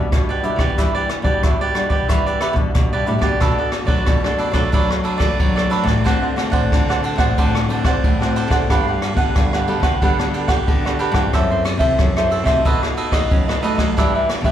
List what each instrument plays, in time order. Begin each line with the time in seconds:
Already playing: nylon-string guitar G3 D4 F#4
0.11 nylon-string guitar B2, kick, cross-stick, closed hi-hat
0.29 cavaquinho G4 B4 D5, closed hi-hat
0.43 nylon-string guitar G3 D4 F#4, cavaquinho E4 G4 B4 D5, closed hi-hat
0.56 nylon-string guitar E3, cavaquinho B4 D5, kick, cross-stick
0.60 cavaquinho G4
0.77 nylon-string guitar E3 G3 D4 F#4, cavaquinho E4 G4 B4 D5, kick, cross-stick, closed hi-hat
0.95 cavaquinho G4 B4 D5, closed hi-hat
1.09 muted cavaquinho stroke, cross-stick, closed hi-hat
1.22 nylon-string guitar B2 G3 D4 F#4, cavaquinho B4 D5, kick, closed hi-hat
1.26 cavaquinho G4
1.43 nylon-string guitar B2, cavaquinho E4 G4 B4 D5, kick, cross-stick, closed hi-hat
1.61 cavaquinho G4 B4 D5
1.75 nylon-string guitar G3 D4 F#4, cross-stick, closed hi-hat
1.90 cavaquinho G4 B4 D5, kick
2.08 nylon-string guitar E3 G3 D4 F#4, cavaquinho E4 G4 B4 D5, kick, cross-stick, closed hi-hat
2.26 cavaquinho G4 B4 D5, closed hi-hat
2.41 cavaquinho E4 G4 B4 D5, cross-stick, closed hi-hat
2.53 nylon-string guitar B2 G3, muted cavaquinho stroke, kick, closed hi-hat
2.57 nylon-string guitar D4 F#4
2.75 nylon-string guitar B2, kick, cross-stick, closed hi-hat
2.93 nylon-string guitar G2, cavaquinho G4 B4 D5
3.06 nylon-string guitar A2 G3 D4 F#4, cavaquinho E4 G4 B4 D5, closed hi-hat
3.19 nylon-string guitar B2, cavaquinho G4 B4 D5, kick, cross-stick
3.40 nylon-string guitar B2 A3 D4 F#4, cavaquinho D4 A4 B4 D5, kick, cross-stick, ride
3.58 cavaquinho A4 B4 D5
3.72 muted cavaquinho stroke, cross-stick, ride
3.85 nylon-string guitar F#3 A3 D4 F#4, cavaquinho A4 B4 D5, kick, ride
4.06 nylon-string guitar B2 F#3, kick, cross-stick, ride
4.24 nylon-string guitar A3 D4 F#4, cavaquinho A4 B4 D5, cross-stick
4.38 cavaquinho D4 A4 B4 D5, ride
4.51 nylon-string guitar F#3 A3 D4, cavaquinho A4 B4 D5, kick, cross-stick, ride
4.55 nylon-string guitar F#4
4.72 nylon-string guitar B2 F#3 A3 D4 F#4, cavaquinho D4 A4 B4 D5, kick, ride
4.90 muted cavaquinho stroke, cross-stick
5.04 cavaquinho D4 A4 B4 D5, ride
5.18 nylon-string guitar A3 D4 F#4, cavaquinho A4 B4 D5, kick, cross-stick, ride
5.39 nylon-string guitar F#3, kick, ride
5.56 cavaquinho A4 B4 D5, cross-stick
5.70 nylon-string guitar A3 D4 F#4, cavaquinho D4 A4 B4 D5, ride
5.84 nylon-string guitar A2, cavaquinho A4 B4 D5, kick, cross-stick, ride
6.04 nylon-string guitar D3 A3 C4 F#4, cavaquinho D4 C5 D5 F#5, kick, cross-stick, ride
6.22 cavaquinho C5 D5 F#5
6.36 nylon-string guitar A3 C4 F#4, muted cavaquinho stroke, cross-stick, ride
6.50 nylon-string guitar A2, cavaquinho C5 D5 F#5, kick, ride
6.71 nylon-string guitar A2 D3, kick, cross-stick, ride
6.89 nylon-string guitar A3 C4 F#4, cavaquinho C5 D5 F#5, cross-stick
7.03 cavaquinho D4 C5 D5 F#5, ride
7.16 nylon-string guitar A2 A3 C4 F#4, cavaquinho D5 F#5, kick, cross-stick, ride
7.20 cavaquinho C5
7.38 nylon-string guitar A2 D3 A3 C4 F#4, cavaquinho D4 C5 D5 F#5, kick, ride
7.55 muted cavaquinho stroke, cross-stick
7.68 nylon-string guitar A3 C4 F#4, cavaquinho D4 C5 D5 F#5, ride
7.84 cavaquinho C5 D5 F#5, kick, cross-stick, ride
8.04 nylon-string guitar A2, kick, ride
8.20 nylon-string guitar A3 C4 F#4, cavaquinho C5 D5 F#5, cross-stick
8.36 cavaquinho D4 C5 D5 F#5, ride
8.48 nylon-string guitar D3 B3 F#4 A4, cavaquinho D5 F#5, kick, cross-stick, ride
8.52 cavaquinho C5
8.69 nylon-string guitar G2 G3, cavaquinho D4 G4 B4 F#5, kick, cross-stick, ride
8.88 cavaquinho G4 B4 F#5
9.02 muted cavaquinho stroke, cross-stick, ride
9.14 nylon-string guitar D3 B3 F#4 A4, cavaquinho B4 F#5, kick, ride
9.19 cavaquinho G4
9.35 nylon-string guitar G2 D3, kick, cross-stick, ride
9.53 cavaquinho G4 B4 F#5, cross-stick
9.67 nylon-string guitar B3 F#4 A4, cavaquinho D4 G4 B4 F#5, ride
9.80 nylon-string guitar D3, cavaquinho B4 F#5, kick, cross-stick, ride
9.84 cavaquinho G4
10.02 nylon-string guitar D3 G3 B3 F#4 A4, cavaquinho D4 G4 B4 F#5, kick, ride
10.19 nylon-string guitar B3 F#4 A4, muted cavaquinho stroke, cross-stick
10.33 cavaquinho D4 G4 B4 F#5, ride
10.48 cavaquinho G4 B4 F#5, kick, cross-stick, ride
10.67 nylon-string guitar D3 B3 F#4 A4, kick, ride
10.85 cavaquinho G4 B4 F#5, cross-stick
10.99 cavaquinho D4 G4 B4 F#5, ride
11.12 nylon-string guitar G2 C4 E4 A4, cavaquinho G4 B4 F#5, kick, cross-stick, ride
11.33 nylon-string guitar F#2 F#3, cavaquinho F#4 A4 C5 E5, kick, cross-stick, ride
11.50 cavaquinho A4 C5 E5
11.64 muted cavaquinho stroke, cross-stick, ride
11.77 nylon-string guitar C3 C4 E4, cavaquinho A4 C5 E5, kick, ride
11.81 nylon-string guitar A4
11.99 nylon-string guitar F#2 F#3, kick, cross-stick, ride
12.17 nylon-string guitar C4 E4 A4, cavaquinho A4 C5 E5, cross-stick
12.30 cavaquinho F#4 A4 C5 E5, ride
12.44 nylon-string guitar C3 A3 D#4 F#4, cavaquinho A4 C5 E5, kick, cross-stick, ride
12.65 nylon-string guitar B2, cavaquinho D#4 A4 B4 D#5, kick, ride
12.83 muted cavaquinho stroke, cross-stick
12.97 cavaquinho D#4 A4 B4 D#5, ride
13.12 nylon-string guitar A3 D#4 F#4, cavaquinho A4 B4 D#5, kick, cross-stick, ride
13.31 nylon-string guitar F#3 C#4, kick, ride
13.48 nylon-string guitar B3, cavaquinho A4 B4 D#5, cross-stick
13.62 nylon-string guitar A3 D#4 F#4, cavaquinho D#4 A4 B4 D#5, ride
13.75 nylon-string guitar F#3, cavaquinho A4 B4 D#5, kick, cross-stick, ride
13.97 nylon-string guitar E3 G3 D4 F#4, cavaquinho D4 G4 B4 E5, kick, cross-stick, ride
14.15 cavaquinho G4 B4 E5
14.29 muted cavaquinho stroke, cross-stick, ride
14.41 nylon-string guitar B2 G3 D4 F#4, cavaquinho B4 E5, kick, ride
14.46 cavaquinho G4